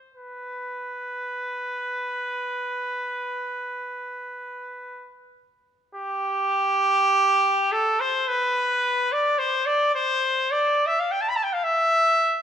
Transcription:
0.15 5.16 B4 medium
5.95 7.74 G4 loud
7.72 8.02 A4 medium
8.00 8.30 C5 medium
8.28 9.14 B4 medium
9.13 9.40 D5 medium
9.39 9.68 C5 medium
9.66 9.93 D5 medium
9.95 10.53 C5 medium
10.51 10.88 D5 medium
10.87 11.01 E5 medium
11.00 11.13 F5 medium
11.11 11.23 G5 medium
11.21 11.31 A5 medium
11.29 11.38 B5 medium
11.36 11.45 A5 medium
11.43 11.55 G5 medium
11.53 11.65 F5 medium
11.64 12.42 E5 loud

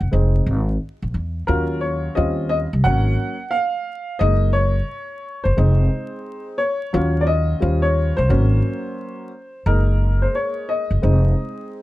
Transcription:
0.01 0.11 F#1 medium
0.12 0.42 F1 medium
0.12 0.61 G#3 medium
0.12 0.61 C4 soft
0.12 0.61 D#4 medium
0.46 0.76 G#1 medium
1.02 1.13 A#1 medium
1.14 1.43 E2 medium
1.47 2.07 D#2 loud
1.47 2.13 F#3 medium
1.47 2.13 C#4 soft
1.47 2.14 F4 medium
1.47 1.79 A#4 medium
1.81 2.13 C#5 medium
2.15 2.65 D#2 loud
2.15 2.65 G3 soft
2.15 2.66 C4 soft
2.15 2.66 C#4 soft
2.15 2.66 F4 medium
2.15 2.48 D#5 medium
2.49 2.57 D#5 loud
2.73 2.86 C2 medium
2.84 3.14 G#1 loud
2.84 3.34 F#3 medium
2.84 3.34 A#3 medium
2.84 3.34 C#4 medium
2.84 3.54 F#5 loud
3.51 4.16 F5 loud
4.19 4.79 F#1 loud
4.19 4.70 G#3 medium
4.19 4.70 A#3 medium
4.19 4.70 D#4 medium
4.19 4.52 D#5 loud
4.53 5.47 C#5 medium
5.44 5.56 F#1 medium
5.44 6.43 C5 medium
5.57 5.87 F1 loud
5.57 6.55 G#3 medium
5.57 6.55 C4 medium
5.57 6.56 D#4 medium
6.58 7.24 C#5 medium
6.93 7.52 D#2 loud
6.93 7.58 F#3 medium
6.93 7.58 C#4 medium
6.93 7.59 F4 medium
7.21 7.27 D5 medium
7.27 7.85 D#5 loud
7.60 8.10 D#2 medium
7.60 8.26 G3 medium
7.60 8.26 C#4 soft
7.60 8.26 F4 medium
7.60 8.15 C5 soft
7.82 8.15 C#5 medium
8.17 8.32 C2 medium
8.17 9.62 C5 loud
8.29 8.59 G#1 loud
8.29 9.28 F#3 medium
8.29 9.28 A#3 medium
8.29 9.28 C#4 medium
9.66 10.25 F#1 loud
9.66 10.98 G#3 medium
9.66 10.99 A#3 medium
9.66 10.99 D#4 medium
9.66 10.24 A#4 medium
10.22 10.33 C5 medium
10.35 10.70 C#5 medium
10.69 11.67 D#5 medium
10.91 11.01 F#1 medium
11.02 11.32 F1 medium
11.02 11.82 G#3 medium
11.02 11.82 C4 medium
11.02 11.82 D#4 medium

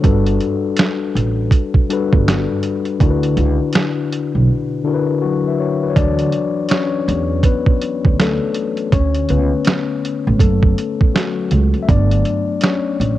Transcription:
0.01 0.37 G1 medium
0.01 0.96 G3 medium
0.01 0.97 D4 medium
0.01 0.97 F#4 medium
0.01 0.98 A4 medium
0.01 0.98 B4 medium
0.01 kick loud
0.01 closed hi-hat medium
0.26 closed hi-hat soft
0.40 closed hi-hat soft
0.77 finger snap loud
0.77 snare loud
0.77 closed hi-hat medium
1.15 1.48 A1 medium
1.15 closed hi-hat medium
1.51 kick medium
1.51 closed hi-hat medium
1.74 kick medium
1.89 2.58 G3 medium
1.89 2.58 D4 medium
1.89 2.59 F#4 medium
1.89 2.59 A4 medium
1.89 2.60 B4 loud
1.89 closed hi-hat medium
2.13 2.45 G1 medium
2.13 kick loud
2.28 finger snap medium
2.28 snare medium
2.28 closed hi-hat medium
2.63 closed hi-hat medium
2.85 closed hi-hat soft
2.99 3.33 D2 loud
2.99 3.93 D3 medium
2.99 3.94 D4 medium
2.99 3.94 E4 medium
2.99 3.95 F#4 medium
2.99 kick loud
2.99 closed hi-hat medium
3.03 3.10 A#4 medium
3.10 3.99 B4 medium
3.23 closed hi-hat medium
3.37 3.57 C#2 medium
3.37 closed hi-hat soft
3.73 finger snap loud
3.73 snare loud
3.73 closed hi-hat medium
4.13 closed hi-hat medium
4.35 4.47 B1 medium
4.83 5.53 D3 medium
4.83 5.54 D4 medium
4.83 5.54 E4 medium
4.83 5.21 F#4 medium
4.83 4.94 A#4 medium
4.94 5.27 B4 medium
5.22 5.88 F#3 medium
5.22 5.59 F#4 medium
5.48 5.60 B4 medium
5.48 5.60 E5 medium
5.60 5.82 F#4 medium
5.60 5.81 C#5 medium
5.83 6.18 F#4 medium
5.83 6.18 B4 medium
5.90 5.95 C#5 medium
5.96 6.29 D2 loud
5.96 6.49 E3 medium
5.96 6.49 F#3 soft
5.96 6.67 D4 medium
5.96 6.50 C#5 medium
5.96 6.72 D5 loud
5.96 kick loud
5.96 closed hi-hat medium
6.19 closed hi-hat medium
6.32 closed hi-hat soft
6.69 7.41 C#4 medium
6.69 7.46 C#5 medium
6.69 finger snap medium
6.69 snare loud
6.69 closed hi-hat medium
7.08 7.41 E2 loud
7.08 closed hi-hat medium
7.43 8.16 B3 medium
7.43 8.21 B4 medium
7.43 kick medium
7.43 closed hi-hat medium
7.66 kick medium
7.82 closed hi-hat medium
8.05 8.38 D2 medium
8.05 kick medium
8.19 8.76 A3 medium
8.19 8.75 A4 medium
8.19 finger snap medium
8.19 snare loud
8.19 closed hi-hat medium
8.54 closed hi-hat medium
8.77 closed hi-hat soft
8.92 9.25 D2 medium
8.92 9.27 C#4 medium
8.92 9.27 C#5 medium
8.92 kick loud
8.92 closed hi-hat medium
9.14 closed hi-hat medium
9.29 9.50 C#2 medium
9.29 10.37 D3 soft
9.29 10.37 A3 medium
9.29 10.00 B3 medium
9.29 10.37 C#4 medium
9.29 10.00 B4 medium
9.29 closed hi-hat medium
9.65 finger snap loud
9.65 snare loud
9.65 closed hi-hat medium
10.05 closed hi-hat medium
10.27 10.40 A1 loud
10.39 10.73 F#1 medium
10.39 11.11 A3 medium
10.39 11.16 A4 medium
10.39 kick medium
10.39 closed hi-hat medium
10.63 kick medium
10.78 closed hi-hat medium
11.01 kick medium
11.14 11.80 F#3 medium
11.14 11.79 F#4 medium
11.14 finger snap medium
11.14 snare loud
11.14 closed hi-hat medium
11.51 11.72 C#2 medium
11.51 closed hi-hat medium
11.74 closed hi-hat soft
11.82 11.88 E5 medium
11.89 12.22 G1 loud
11.89 12.96 F#3 medium
11.89 12.96 A3 soft
11.89 12.96 B3 medium
11.89 12.60 D4 medium
11.89 12.65 D5 loud
11.89 kick loud
11.89 closed hi-hat medium
12.11 closed hi-hat medium
12.25 closed hi-hat soft
12.61 13.19 C#4 medium
12.61 13.19 C#5 medium
12.61 finger snap medium
12.61 snare loud
12.61 closed hi-hat medium
13.00 13.19 A1 medium
13.00 closed hi-hat medium

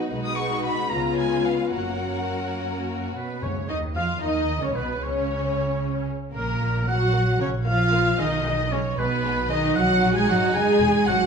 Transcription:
0.00 0.10 F#3 soft
0.00 0.12 B3 soft
0.00 0.10 F#4 soft
0.00 0.88 F#4 soft
0.00 0.10 B4 soft
0.00 0.11 D#5 medium
0.10 0.61 B1 soft
0.10 0.88 B2 soft
0.10 0.88 G#3 soft
0.10 0.91 G#3 soft
0.10 0.87 D#4 soft
0.10 0.88 F#4 soft
0.10 0.88 B4 soft
0.25 0.37 D#6 medium
0.37 0.64 C#6 medium
0.65 0.92 B5 medium
0.91 1.43 C#2 soft
0.91 1.73 C#3 soft
0.91 1.73 G#3 soft
0.91 1.75 B3 soft
0.91 1.74 C#4 soft
0.91 1.74 F4 soft
0.91 1.75 F4 soft
0.91 1.73 B4 soft
0.91 1.19 A#5 medium
1.18 1.46 G#5 medium
1.46 1.74 F5 soft
1.72 2.27 F#1 soft
1.72 3.12 F#2 soft
1.72 3.12 A#3 soft
1.72 3.12 C#4 soft
1.72 3.12 F#4 soft
1.72 3.14 A#4 soft
1.72 3.10 F#5 medium
3.14 3.40 B2 soft
3.14 3.40 B3 soft
3.14 3.44 B4 soft
3.14 3.40 B4 soft
3.42 3.67 C#2 soft
3.42 4.18 F#2 medium
3.42 3.69 C#3 soft
3.42 3.50 C#4 soft
3.42 3.51 C#4 soft
3.42 3.69 C#5 soft
3.68 3.95 D#2 soft
3.68 3.95 D#3 soft
3.68 3.76 D#4 soft
3.68 3.77 D#4 soft
3.68 3.76 D#5 soft
3.68 3.81 D#5 soft
3.94 4.22 F2 soft
3.94 4.03 F3 soft
3.94 4.21 F4 medium
3.94 4.04 F4 medium
3.94 4.22 F5 soft
3.94 4.08 F5 medium
4.22 4.62 D#2 soft
4.22 4.61 D#3 soft
4.22 4.62 D#4 soft
4.22 4.62 D#4 medium
4.22 4.64 D#5 medium
4.22 4.61 D#5 soft
4.60 4.75 C#2 soft
4.60 4.76 C#3 soft
4.60 4.74 C#4 soft
4.60 4.67 C#4 soft
4.60 4.75 C#5 soft
4.60 4.77 C#5 medium
4.72 5.02 B1 soft
4.72 5.02 B2 soft
4.72 4.80 B3 soft
4.72 5.02 B3 soft
4.72 5.01 B4 soft
4.72 5.04 B4 medium
4.99 6.06 C#2 medium
4.99 6.06 C#3 medium
4.99 6.04 C#4 medium
4.99 6.06 C#4 soft
4.99 6.08 C#5 medium
6.32 6.59 A#1 medium
6.32 6.84 A#2 medium
6.32 6.58 A#3 medium
6.32 6.85 A#3 medium
6.32 6.84 A#4 medium
6.61 7.31 A#1 medium
6.61 6.69 A#3 medium
6.87 7.40 F#3 medium
6.87 6.95 A#3 soft
6.87 7.41 F#4 medium
6.87 7.40 F#5 medium
6.87 7.41 F#5 medium
7.13 7.21 A#3 soft
7.39 8.09 A#1 medium
7.39 7.48 C#3 medium
7.39 7.47 A#3 soft
7.39 7.49 C#4 medium
7.39 7.48 C#5 medium
7.39 7.53 C#5 medium
7.64 8.18 F3 medium
7.64 7.72 A#3 soft
7.64 8.18 F4 medium
7.64 8.21 F5 medium
7.64 8.18 F5 medium
7.91 7.99 A#3 soft
8.18 8.88 B1 medium
8.18 8.71 D#3 medium
8.18 8.26 G#3 medium
8.18 8.70 D#4 medium
8.18 8.71 D#5 medium
8.18 8.73 D#5 medium
8.45 8.53 G#3 soft
8.71 8.79 C#3 medium
8.71 8.80 G#3 medium
8.71 8.79 C#4 medium
8.71 9.00 C#5 medium
8.71 8.98 C#5 medium
8.98 9.67 B1 medium
8.98 9.49 B2 medium
8.98 9.07 G#3 medium
8.98 9.49 B3 medium
8.98 9.49 B4 medium
9.24 9.32 G#3 medium
9.49 9.76 D#3 medium
9.49 9.57 G#3 medium
9.49 9.76 D#4 medium
9.49 9.75 D#5 medium
9.49 9.77 D#5 medium
9.76 10.01 B1 medium
9.76 10.16 F#3 medium
9.76 11.26 D#4 medium
9.76 10.15 F#4 medium
9.76 10.14 F#5 medium
9.76 10.15 F#5 medium
10.02 10.28 A#1 medium
10.14 10.28 G#3 medium
10.14 10.28 G#4 medium
10.14 10.28 G#5 medium
10.28 10.37 G#1 medium
10.28 10.37 F#3 medium
10.28 10.54 F#4 medium
10.28 10.54 F#5 medium
10.54 10.62 F#1 medium
10.54 11.06 G#3 medium
10.54 11.06 G#4 medium
10.54 11.06 G#5 medium
10.54 11.07 G#5 medium
10.81 10.89 E1 medium
11.07 11.26 G#1 medium
11.07 11.26 F#3 medium
11.07 11.26 F#4 medium
11.07 11.26 F#5 medium
11.07 11.19 F#5 medium

